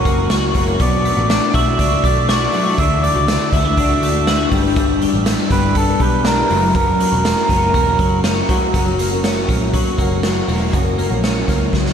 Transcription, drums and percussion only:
0.05 kick medium
0.05 closed hi-hat medium
0.30 snare loud
0.30 closed hi-hat medium
0.55 kick medium
0.55 closed hi-hat medium
0.80 kick loud
0.80 closed hi-hat medium
1.05 closed hi-hat medium
1.30 snare loud
1.30 closed hi-hat loud
1.54 kick medium
1.54 closed hi-hat medium
1.79 kick medium
1.79 closed hi-hat medium
2.04 kick medium
2.04 closed hi-hat medium
2.29 snare loud
2.29 closed hi-hat medium
2.54 open hi-hat medium
2.78 kick loud
2.78 closed hi-hat medium
3.04 closed hi-hat medium
3.28 snare loud
3.28 closed hi-hat loud
3.53 kick medium
3.53 closed hi-hat medium
3.77 kick medium
3.77 closed hi-hat medium
4.03 closed hi-hat medium
4.27 snare loud
4.27 closed hi-hat loud
4.52 kick medium
4.52 open hi-hat medium
4.76 kick loud
4.76 closed hi-hat medium
5.01 closed hi-hat medium
5.26 snare loud
5.26 closed hi-hat loud
5.50 kick medium
5.50 snare soft
5.50 closed hi-hat medium
5.75 kick medium
5.75 closed hi-hat medium
6.00 kick medium
6.00 closed hi-hat medium
6.25 snare loud
6.25 closed hi-hat medium
6.50 open hi-hat medium
6.75 kick loud
6.75 closed hi-hat medium
7.00 closed hi-hat medium
7.25 snare loud
7.25 closed hi-hat loud
7.49 kick medium
7.49 closed hi-hat medium
7.74 kick medium
7.74 closed hi-hat medium
7.99 kick loud
7.99 closed hi-hat medium
8.24 snare loud
8.24 closed hi-hat medium
8.49 kick loud
8.49 closed hi-hat medium
8.74 kick loud
8.74 closed hi-hat medium
8.99 closed hi-hat medium
9.24 snare loud
9.24 closed hi-hat medium
9.49 kick medium
9.49 closed hi-hat medium
9.73 kick medium
9.73 closed hi-hat medium
9.98 kick medium
9.98 closed hi-hat medium
10.23 snare loud
10.23 closed hi-hat medium
10.49 open hi-hat medium
10.73 kick loud
10.73 closed hi-hat medium
10.99 closed hi-hat medium
11.24 snare loud
11.24 closed hi-hat medium
11.48 kick medium
11.48 snare soft
11.48 closed hi-hat medium
11.73 kick medium
11.73 snare soft
11.86 snare soft

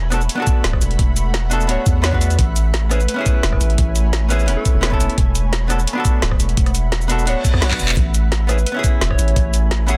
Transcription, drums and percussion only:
0.12 cross-stick medium
0.12 closed hi-hat medium
0.12 shaker medium
0.21 shaker soft
0.29 closed hi-hat medium
0.47 kick loud
0.47 closed hi-hat medium
0.47 shaker medium
0.64 snare loud
0.64 closed hi-hat medium
0.73 kick medium
0.73 cross-stick soft
0.81 closed hi-hat medium
0.81 shaker medium
0.91 closed hi-hat soft
0.99 kick loud
0.99 closed hi-hat medium
1.16 closed hi-hat medium
1.16 shaker medium
1.34 snare loud
1.34 closed hi-hat medium
1.51 closed hi-hat medium
1.51 shaker medium
1.61 shaker soft
1.69 closed hi-hat medium
1.86 kick loud
1.86 closed hi-hat medium
1.86 shaker medium
2.04 snare loud
2.04 closed hi-hat medium
2.13 kick medium
2.21 closed hi-hat medium
2.21 shaker medium
2.30 closed hi-hat soft
2.30 shaker soft
2.39 kick loud
2.39 closed hi-hat medium
2.56 closed hi-hat medium
2.56 shaker medium
2.74 snare loud
2.74 closed hi-hat medium
2.91 cross-stick soft
2.91 closed hi-hat medium
2.91 shaker medium
3.00 shaker soft
3.08 closed hi-hat medium
3.26 kick loud
3.26 closed hi-hat medium
3.26 shaker medium
3.43 snare loud
3.43 closed hi-hat medium
3.52 kick medium
3.52 cross-stick soft
3.61 closed hi-hat medium
3.61 shaker medium
3.70 closed hi-hat soft
3.78 kick loud
3.78 closed hi-hat loud
3.96 closed hi-hat medium
3.96 shaker medium
4.13 snare loud
4.13 closed hi-hat medium
4.30 closed hi-hat medium
4.30 shaker medium
4.39 shaker soft
4.48 closed hi-hat loud
4.65 kick loud
4.65 closed hi-hat medium
4.65 shaker medium
4.83 snare loud
4.83 closed hi-hat medium
4.92 kick medium
5.00 closed hi-hat medium
5.00 shaker medium
5.10 closed hi-hat soft
5.18 kick loud
5.18 closed hi-hat loud
5.35 closed hi-hat medium
5.35 shaker medium
5.53 snare loud
5.53 closed hi-hat loud
5.70 cross-stick soft
5.70 closed hi-hat medium
5.70 shaker medium
5.79 shaker soft
5.87 closed hi-hat loud
6.05 kick loud
6.05 closed hi-hat medium
6.05 shaker medium
6.22 snare loud
6.22 closed hi-hat medium
6.31 kick medium
6.31 cross-stick soft
6.40 closed hi-hat medium
6.40 shaker medium
6.49 closed hi-hat soft
6.57 kick loud
6.57 closed hi-hat loud
6.66 cross-stick soft
6.66 closed hi-hat soft
6.75 closed hi-hat medium
6.75 shaker medium
6.92 snare loud
6.92 closed hi-hat loud
7.01 shaker soft
7.10 closed hi-hat medium
7.10 shaker medium
7.19 shaker soft
7.27 closed hi-hat loud
7.45 kick loud
7.45 closed hi-hat medium
7.45 shaker medium
7.54 cross-stick medium
7.62 snare loud
7.62 closed hi-hat medium
7.71 kick medium
7.71 clap medium
7.79 closed hi-hat medium
7.79 shaker medium
7.89 clap loud
7.89 closed hi-hat soft
7.89 shaker soft
7.97 kick loud
7.97 closed hi-hat medium
8.14 closed hi-hat medium
8.14 shaker medium
8.32 snare loud
8.32 closed hi-hat loud
8.49 cross-stick medium
8.49 closed hi-hat medium
8.49 shaker medium
8.58 shaker soft
8.66 closed hi-hat loud
8.84 kick loud
8.84 closed hi-hat medium
8.84 shaker medium
9.01 snare loud
9.01 closed hi-hat loud
9.11 kick medium
9.11 cross-stick soft
9.19 closed hi-hat medium
9.19 shaker medium
9.28 closed hi-hat soft
9.36 kick loud
9.36 closed hi-hat medium
9.54 closed hi-hat medium
9.54 shaker medium
9.71 snare loud
9.71 closed hi-hat loud
9.88 closed hi-hat medium
9.88 shaker medium

